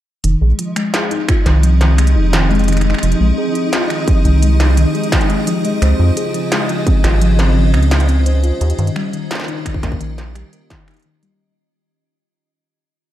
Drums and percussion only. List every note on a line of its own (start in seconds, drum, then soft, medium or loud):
0.24 closed hi-hat medium
0.59 closed hi-hat medium
0.76 finger snap medium
0.76 closed hi-hat medium
0.94 snare loud
0.94 closed hi-hat medium
1.11 closed hi-hat soft
1.29 finger snap medium
1.29 kick loud
1.29 closed hi-hat medium
1.46 snare medium
1.46 closed hi-hat medium
1.63 closed hi-hat medium
1.81 snare medium
1.81 closed hi-hat soft
1.98 finger snap medium
1.98 closed hi-hat medium
2.07 closed hi-hat medium
2.33 snare loud
2.33 closed hi-hat medium
2.51 closed hi-hat soft
2.55 closed hi-hat soft
2.59 closed hi-hat soft
2.64 closed hi-hat soft
2.68 finger snap soft
2.68 closed hi-hat medium
2.72 finger snap soft
2.72 closed hi-hat soft
2.77 finger snap soft
2.77 closed hi-hat soft
2.81 finger snap soft
2.81 closed hi-hat soft
2.90 finger snap soft
2.94 finger snap soft
2.99 finger snap soft
3.03 closed hi-hat medium
3.12 closed hi-hat soft
3.55 closed hi-hat medium
3.73 snare loud
3.73 closed hi-hat medium
3.90 finger snap medium
3.90 closed hi-hat soft
4.08 kick loud
4.08 closed hi-hat medium
4.25 closed hi-hat medium
4.42 closed hi-hat medium
4.60 finger snap medium
4.60 snare medium
4.60 closed hi-hat soft
4.77 closed hi-hat medium
4.95 closed hi-hat soft
5.03 closed hi-hat soft
5.12 finger snap medium
5.12 kick loud
5.12 snare loud
5.12 closed hi-hat medium
5.21 closed hi-hat soft
5.30 closed hi-hat soft
5.47 closed hi-hat medium
5.65 closed hi-hat medium
5.82 finger snap soft
5.82 closed hi-hat medium
6.17 closed hi-hat medium
6.34 closed hi-hat medium
6.52 finger snap medium
6.52 snare loud
6.52 closed hi-hat medium
6.69 closed hi-hat soft
6.87 kick loud
6.87 closed hi-hat medium
7.04 finger snap medium
7.04 snare medium
7.04 closed hi-hat medium
7.21 closed hi-hat medium
7.39 snare medium
7.39 closed hi-hat soft
7.74 finger snap medium
7.74 closed hi-hat soft
7.83 closed hi-hat soft
7.91 snare loud
7.91 closed hi-hat medium
8.00 closed hi-hat soft
8.09 closed hi-hat soft
8.26 closed hi-hat medium
8.44 closed hi-hat medium
8.61 closed hi-hat medium
8.70 closed hi-hat medium
8.79 closed hi-hat medium
8.87 closed hi-hat soft
8.96 finger snap medium
9.13 closed hi-hat medium
9.31 snare loud
9.31 closed hi-hat medium
9.35 snare medium
9.40 snare medium
9.44 snare medium
9.48 closed hi-hat soft
9.66 finger snap medium
9.66 kick medium
9.66 closed hi-hat medium
9.74 kick medium
9.83 kick medium
9.83 snare medium
9.83 closed hi-hat medium
9.92 kick loud
10.01 closed hi-hat medium
10.18 snare medium
10.18 closed hi-hat soft
10.35 finger snap soft
10.35 closed hi-hat medium
10.53 closed hi-hat medium
10.70 kick loud
10.70 snare loud
10.70 closed hi-hat medium
10.88 finger snap medium
10.88 closed hi-hat soft
10.91 closed hi-hat soft
10.94 closed hi-hat soft
10.97 closed hi-hat soft
10.99 closed hi-hat soft
11.02 closed hi-hat soft
11.23 closed hi-hat medium